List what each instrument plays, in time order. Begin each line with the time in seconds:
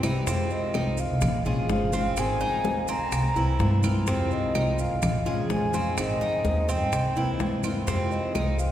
0.02 upright bass C2, nylon-string guitar E3 G3 C4 E4, cuban tres D#4, low bongo, claves, maracas
0.26 upright bass F2, nylon-string guitar C3 D#3 G#3 C4 F4, cuban tres C4, flute C5, high bongo, maracas
0.50 flute D#5, high conga, maracas
0.74 upright bass C2, nylon-string guitar D#3 G#3 C4 F4, cuban tres D#4, high bongo, high conga, claves, maracas
0.97 flute F5, high conga, maracas
1.10 upright bass C2
1.21 upright bass A#1, muted nylon-string guitar stroke, high bongo, high conga, low conga, claves, maracas
1.45 upright bass A#1, nylon-string guitar G#3 C#4 F4, cuban tres G#4, flute F5, high conga, maracas
1.69 upright bass G1, nylon-string guitar F3 G#3 C#4 F4, flute F5, high bongo, low bongo, high conga, maracas
1.93 nylon-string guitar G#3 C#4 F4, cuban tres C4, high conga, maracas
2.17 upright bass G#1, nylon-string guitar D#3 C4 D#4 G#4, flute G#5, high bongo, high conga, claves, maracas
2.40 cuban tres D#4, high bongo, high conga, maracas
2.64 upright bass D#2, nylon-string guitar C4 D#4 G#4, high bongo, high conga, maracas
2.88 cuban tres C4, flute A#5, high bongo, high conga, maracas
3.00 upright bass A#1
3.12 upright bass C2, muted nylon-string guitar stroke, high bongo, high conga, claves, maracas
3.35 upright bass C2, nylon-string guitar E3 A#3 C4 E4, cuban tres E4, high bongo, high conga, maracas
3.59 upright bass G2, nylon-string guitar E3 A#3 C4 E4, high bongo, low bongo, high conga, maracas
3.83 nylon-string guitar E3 A#3 C4 E4, cuban tres F4, high conga, claves, maracas
4.07 upright bass F2, nylon-string guitar C3 D#3 G#3 C4 F4, cuban tres C4, flute C5, high bongo, high conga, maracas
4.31 flute D#5, high conga, maracas
4.54 upright bass C2, nylon-string guitar D#3 G#3 C4 F4, cuban tres D#4, high bongo, high conga, claves, maracas
4.79 flute F5, high conga, maracas
4.90 upright bass C2
5.02 upright bass A#1, muted nylon-string guitar stroke, high bongo, high conga, low conga, claves, maracas
5.25 upright bass A#1, nylon-string guitar G#3 C#4 F4, cuban tres G#4, flute F5, high conga, maracas
5.49 upright bass F2, nylon-string guitar F3 G#3 C#4 F4, flute G#5, high bongo, low bongo, high conga, maracas
5.73 nylon-string guitar G#3 C#4 F4, cuban tres C4, high conga, maracas
5.97 upright bass G#1, nylon-string guitar D#3 C4 D#4 G#4, flute D#5, high bongo, high conga, claves, maracas
6.21 cuban tres D#4, high bongo, high conga, maracas
6.44 upright bass D#2, nylon-string guitar C4 D#4 G#4, high bongo, high conga, maracas
6.68 cuban tres C4, flute G5, high bongo, high conga, maracas
6.80 upright bass G2
6.92 upright bass C2, muted nylon-string guitar stroke, high bongo, high conga, claves, maracas
7.16 upright bass C2, nylon-string guitar E3 A#3 C4 E4, cuban tres E4, high bongo, high conga, maracas
7.39 upright bass G2, nylon-string guitar E3 A#3 C4 E4, high bongo, low bongo, high conga, maracas
7.63 nylon-string guitar E3 A#3 C4 E4, cuban tres F4, high conga, claves, maracas
7.87 upright bass F2, nylon-string guitar C3 D#3 G#3 C4 F4, cuban tres C4, flute C5, high bongo, high conga, maracas
8.11 flute D#5, high conga, maracas
8.34 upright bass C2, nylon-string guitar D#3 G#3 C4 F4, cuban tres D#4, high bongo, high conga, claves, maracas
8.59 flute F5, high conga, maracas